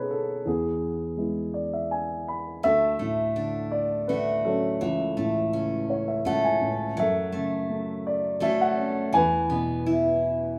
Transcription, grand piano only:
0.00 0.41 B2 medium
0.00 0.48 A3 soft
0.00 0.47 B3 soft
0.00 0.48 D#4 soft
0.00 0.02 G#4 medium
0.00 0.47 G#4 soft
0.00 0.11 A4 medium
0.00 0.48 B4 medium
0.00 0.48 C#5 medium
0.11 0.47 A4 medium
0.45 2.60 E2 soft
0.45 1.16 B3 soft
0.45 2.24 G#4 medium
1.17 1.88 G#3 soft
1.17 1.89 B3 soft
1.17 1.89 E4 soft
1.54 1.71 D5 medium
1.73 1.90 E5 medium
1.91 2.25 G#5 medium
2.28 2.62 B5 medium
2.64 4.78 D2 soft
2.64 3.70 A4 medium
2.64 3.69 E5 loud
3.01 4.42 A2 soft
3.37 4.77 D3 soft
3.71 4.09 D5 medium
4.07 4.79 A3 soft
4.07 4.45 B4 medium
4.45 4.80 F#3 soft
4.45 6.59 C#4 soft
4.45 6.57 A4 medium
4.82 6.25 C#2 medium
5.18 6.58 A2 soft
5.52 6.93 C#3 soft
5.90 6.06 C#5 medium
6.08 6.24 E5 medium
6.26 6.96 C#2 soft
6.26 6.43 F#5 soft
6.44 6.94 G#5 medium
6.62 6.97 A2 medium
6.98 9.10 F#2 soft
6.98 8.03 A4 medium
6.98 8.10 E5 medium
7.35 8.74 C#3 soft
7.70 9.10 A3 soft
8.07 8.43 D5 medium
8.42 9.12 F#4 soft
8.42 8.61 E5 medium
8.61 9.16 F#5 medium
8.78 9.13 C#4 medium
9.14 10.59 E2 medium
9.14 10.56 B4 medium
9.14 10.55 G#5 medium
9.51 10.59 B2 soft
9.86 10.59 E3 soft

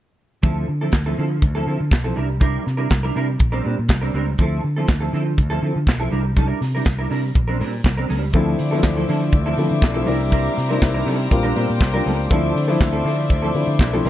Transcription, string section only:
8.34 14.10 C5 medium
8.34 10.07 D5 medium
8.34 11.29 E5 medium
8.34 14.01 D6 medium
10.06 12.28 A#5 medium
11.30 12.29 G5 medium
12.31 14.03 D5 medium
12.31 14.10 E5 medium
14.05 14.10 A#5 medium
14.05 14.10 D6 medium

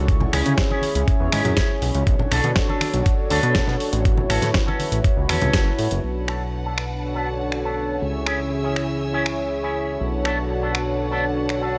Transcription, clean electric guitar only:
0.20 muted clean electric guitar stroke medium
0.32 0.52 C#4 loud
0.32 0.52 E4 loud
0.32 0.52 G#4 loud
0.70 1.01 C#4 medium
0.70 1.01 E4 medium
0.70 1.02 G#4 medium
1.32 1.76 C#4 loud
1.32 1.76 E4 loud
1.32 1.76 G#4 loud
2.19 muted clean electric guitar stroke medium
2.31 2.50 B3 loud
2.31 2.50 D4 loud
2.31 2.51 A4 loud
2.68 2.99 B3 medium
2.68 3.00 D4 medium
2.68 3.00 A4 medium
3.30 3.74 B3 loud
3.30 3.74 D4 loud
3.30 3.74 A4 loud
4.17 muted clean electric guitar stroke medium
4.29 4.48 C#4 loud
4.29 4.48 F#4 loud
4.29 4.49 A4 loud
4.66 4.98 C#4 medium
4.66 4.98 F#4 medium
4.66 4.98 A4 medium
5.28 5.72 C#4 loud
5.28 5.72 F#4 loud
5.28 5.73 A4 loud
6.27 6.40 B3 loud
6.27 6.41 D4 medium
6.27 6.41 A4 loud
6.52 muted clean electric guitar stroke soft
6.65 6.84 B3 medium
6.65 6.84 D4 medium
6.65 6.85 A4 medium
7.02 muted clean electric guitar stroke soft
7.14 7.27 B3 loud
7.14 7.28 D4 medium
7.14 7.28 A4 loud
7.39 muted clean electric guitar stroke soft
7.64 7.95 B3 medium
7.64 7.96 D4 medium
7.64 7.96 A4 medium
8.26 8.39 C#4 loud
8.26 8.39 E4 medium
8.26 8.40 G#4 loud
8.51 muted clean electric guitar stroke soft
8.63 8.82 C#4 medium
8.63 8.83 E4 medium
8.63 8.83 G#4 medium
9.00 muted clean electric guitar stroke soft
9.13 9.26 C#4 loud
9.13 9.26 E4 medium
9.13 9.26 G#4 loud
9.38 muted clean electric guitar stroke soft
9.62 9.94 C#4 medium
9.62 9.94 E4 medium
9.62 9.95 G#4 medium
10.24 10.37 B3 loud
10.24 10.38 D4 medium
10.24 10.38 A4 loud
10.49 muted clean electric guitar stroke soft
10.62 10.81 B3 medium
10.62 10.81 D4 medium
10.62 10.81 A4 medium
10.99 muted clean electric guitar stroke soft
11.11 11.24 B3 loud
11.11 11.24 D4 medium
11.11 11.25 A4 loud
11.36 muted clean electric guitar stroke soft
11.60 11.78 B3 medium
11.60 11.78 D4 medium
11.60 11.78 A4 medium

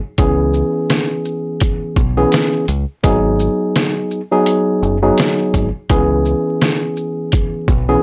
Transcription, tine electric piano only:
0.19 1.99 E3 medium
0.19 2.00 B3 medium
0.19 2.00 C#4 medium
0.19 2.00 G#4 loud
2.17 2.64 E3 medium
2.17 2.64 B3 medium
2.17 2.65 C#4 medium
2.17 2.65 G#4 loud
3.03 4.20 F#3 medium
3.03 4.20 B3 medium
3.03 4.20 D#4 medium
3.03 4.20 G#4 loud
4.32 4.96 F#3 medium
4.32 4.97 B3 medium
4.32 4.97 D#4 medium
4.32 4.97 G#4 loud
5.02 5.67 F#3 loud
5.02 5.68 B3 medium
5.02 5.68 D#4 medium
5.02 5.68 G#4 medium
5.90 7.71 E3 medium
5.90 7.71 B3 medium
5.90 7.71 C#4 medium
5.90 7.71 G#4 loud
7.88 8.03 E3 medium
7.88 8.03 B3 medium
7.88 8.03 C#4 medium
7.88 8.03 G#4 loud

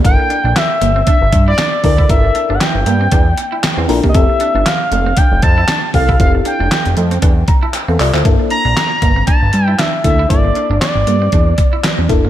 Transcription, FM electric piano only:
0.04 0.48 D4 medium
0.04 0.48 E4 medium
0.04 0.49 A4 medium
0.04 0.49 A#4 medium
1.83 1.96 D4 medium
1.83 1.96 E4 medium
1.83 1.96 A4 medium
1.83 1.96 A#4 medium
2.09 2.53 D4 medium
2.09 2.53 E4 medium
2.09 2.53 A4 medium
2.09 2.53 A#4 medium
3.88 4.01 D4 loud
3.88 4.01 E4 medium
3.88 4.01 A4 medium
3.88 4.01 A#4 loud
4.14 4.58 C4 medium
4.14 4.58 E4 medium
4.14 4.58 G4 medium
4.14 4.59 A4 loud
5.94 6.06 C4 medium
5.94 6.06 E4 medium
5.94 6.06 G4 medium
5.94 6.07 A4 medium
6.20 6.64 C4 medium
6.20 6.64 E4 medium
6.20 6.64 G4 medium
6.20 6.64 A4 medium
7.48 7.61 A#5 medium
7.63 7.73 A5 medium
7.74 7.88 G5 medium
7.88 7.99 A4 medium
7.88 7.99 F5 medium
8.00 8.14 F4 medium
8.00 8.13 D5 medium
8.00 8.23 E5 medium
8.14 8.24 E4 medium
8.14 8.38 C5 medium
8.25 8.69 A#3 medium
8.25 8.69 D4 medium
8.25 8.69 E4 medium
8.25 8.69 A4 loud
10.04 10.16 A#3 medium
10.04 10.16 D4 medium
10.04 10.16 E4 medium
10.04 10.17 A4 medium
10.30 10.74 A#3 medium
10.30 10.74 D4 medium
10.30 10.74 E4 medium
10.30 10.74 A4 medium
12.09 12.21 A#3 medium
12.09 12.21 D4 medium
12.09 12.21 E4 medium
12.09 12.22 A4 loud

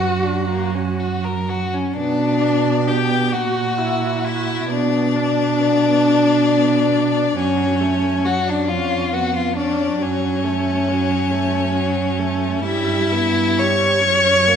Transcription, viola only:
0.00 1.20 F#4 medium
1.97 2.42 B3 medium
2.41 2.89 D4 soft
2.88 3.32 B3 soft
3.33 3.79 F#4 soft
3.78 4.26 E4 soft
4.25 4.68 F#4 soft
4.69 5.17 B3 soft
5.16 5.61 D4 soft
5.60 6.06 B3 soft
6.05 6.47 D4 soft
6.48 6.95 B3 soft
6.93 7.36 D4 soft
7.37 7.82 F#3 medium
7.80 8.26 A3 soft
8.24 8.68 F#3 soft
8.68 9.14 C#4 soft
9.13 9.58 B3 soft
9.56 10.00 C#4 soft
10.01 10.45 F#3 soft
10.44 10.89 A3 soft
10.88 11.33 F#3 soft
11.31 11.73 A3 medium
11.74 12.20 F#3 soft
12.19 12.64 A3 soft
12.65 13.13 G3 medium
13.12 13.61 B3 soft
13.60 14.03 G3 soft
14.03 14.48 C#4 medium
14.47 14.56 A#3 soft

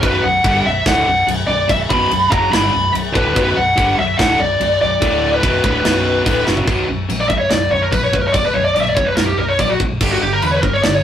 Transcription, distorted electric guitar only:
0.01 0.22 B1 medium
0.01 0.22 F#2 loud
0.01 0.23 B2 loud
0.23 0.40 B1 medium
0.23 0.40 F#2 medium
0.45 0.65 G2 medium
0.45 0.65 D3 medium
0.45 0.65 G3 loud
0.66 0.82 B1 medium
0.66 0.82 F#2 medium
0.86 1.06 D2 medium
0.86 1.07 A2 loud
0.86 1.07 D3 loud
1.07 1.23 B1 medium
1.07 1.24 F#2 medium
1.27 1.44 B1 medium
1.27 1.44 F#2 medium
1.48 1.65 B1 medium
1.48 1.65 F#2 medium
1.68 1.85 B1 medium
1.68 1.85 F#2 medium
1.89 2.09 B1 medium
1.89 2.10 F#2 medium
1.89 2.10 B2 loud
2.10 2.27 B1 medium
2.10 2.27 F#2 medium
2.30 2.50 F#2 loud
2.30 2.51 C#3 loud
2.30 2.51 F#3 loud
2.51 2.72 G2 loud
2.51 2.72 D3 loud
2.51 2.72 G3 loud
2.73 2.90 B1 medium
2.73 2.90 F#2 medium
2.93 3.10 B1 medium
2.93 3.10 F#2 medium
3.12 3.34 D2 medium
3.12 3.34 A2 loud
3.12 3.34 D3 loud
3.34 3.55 B1 loud
3.34 3.55 F#2 loud
3.34 3.56 B2 loud
3.56 3.73 B1 medium
3.56 3.73 F#2 medium
3.76 3.97 G2 medium
3.76 3.97 D3 medium
3.76 3.97 G3 medium
3.98 4.15 B1 medium
3.98 4.15 F#2 medium
4.18 4.38 D2 loud
4.18 4.38 A2 loud
4.18 4.39 D3 loud
4.38 4.55 B1 medium
4.38 4.56 F#2 medium
4.60 4.77 B1 medium
4.60 4.77 F#2 medium
4.81 4.98 B1 medium
4.81 4.98 F#2 medium
5.00 5.42 D2 loud
5.00 5.42 A2 loud
5.00 5.43 D3 loud
5.43 5.63 B1 medium
5.43 5.64 F#2 loud
5.43 5.64 B2 loud
5.63 5.84 D2 medium
5.63 5.84 A2 medium
5.63 5.85 D3 loud
5.84 6.26 B1 loud
5.84 6.26 F#2 loud
5.84 6.26 B2 loud
6.26 6.46 D2 medium
6.26 6.46 A2 medium
6.26 6.47 D3 loud
6.46 6.66 F#2 medium
6.46 6.67 C#3 medium
6.46 6.68 F#3 loud
6.67 6.86 B1 medium
6.67 6.87 F#2 medium
6.67 6.88 B2 medium
6.88 7.07 B1 medium
6.88 7.08 F#2 medium
7.09 7.27 B1 medium
7.09 7.28 F#2 medium
7.28 7.48 B1 medium
7.28 7.49 F#2 medium
7.50 7.70 B1 medium
7.50 7.70 F#2 medium
7.71 7.90 B1 medium
7.71 7.91 F#2 medium
7.92 8.11 B1 medium
7.92 8.12 F#2 medium
8.13 8.32 B1 medium
8.13 8.32 F#2 medium
8.34 8.52 B1 medium
8.34 8.53 F#2 medium
8.54 8.73 B1 medium
8.54 8.74 F#2 medium
8.76 8.95 B1 medium
8.76 8.95 F#2 medium
8.97 9.16 B1 medium
8.97 9.16 F#2 medium
9.19 9.37 B1 medium
9.19 9.37 F#2 medium
9.39 9.58 B1 medium
9.39 9.58 F#2 medium
9.60 9.79 B1 medium
9.60 9.79 F#2 medium
9.81 9.99 B1 medium
9.81 9.99 F#2 medium
10.02 10.21 G2 medium
10.02 10.21 D3 loud
10.02 10.22 G3 loud
10.22 10.41 G2 medium
10.22 10.41 D3 medium
10.43 10.62 G2 medium
10.43 10.62 D3 medium
10.64 10.83 G2 medium
10.64 10.83 D3 medium
10.85 11.03 G2 medium
10.85 11.03 D3 medium

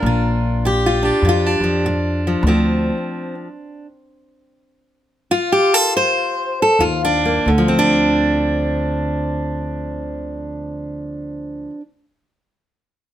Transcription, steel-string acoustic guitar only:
0.00 1.02 D4 soft
0.00 0.65 A#4 loud
0.06 0.61 A#2 medium
0.06 0.86 F4 soft
0.65 1.20 A#2 medium
0.65 1.03 G4 medium
0.86 1.25 F4 medium
1.03 1.46 D4 soft
1.03 1.84 G4 medium
1.25 1.80 A#2 medium
1.25 1.46 F4 medium
1.46 3.86 D4 medium
1.64 2.27 F3 medium
1.86 2.41 A#2 medium
2.27 2.47 F3 soft
2.47 2.97 D3 medium
2.47 3.47 F3 medium
2.47 3.34 C4 medium
5.31 6.16 F4 medium
5.52 5.74 G4 medium
5.74 5.94 A4 medium
5.97 6.60 C5 medium
6.62 6.82 A4 medium
6.80 7.43 D#3 medium
6.80 7.03 F4 medium
7.05 7.49 D4 loud
7.25 7.49 A#3 medium
7.48 11.70 D3 medium
7.58 11.75 F3 medium
7.68 11.80 C4 medium
7.79 11.81 D4 loud

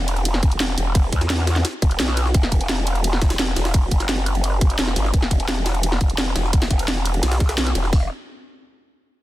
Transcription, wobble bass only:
0.00 0.41 E1 loud
0.43 0.76 E1 loud
0.78 1.11 E1 loud
1.13 1.63 E2 loud
1.82 1.98 E1 loud
2.00 2.33 B1 medium
2.35 3.20 E1 medium
3.22 3.55 E1 loud
3.57 3.90 E1 loud
3.92 4.77 F#1 loud
4.79 4.95 E1 loud
4.96 5.12 G1 loud
5.14 5.99 E1 loud
6.01 6.34 E1 loud
6.36 6.69 E1 loud
6.71 7.22 E1 loud
7.23 7.74 B1 loud
7.75 7.91 E1 loud
7.93 8.09 E1 loud

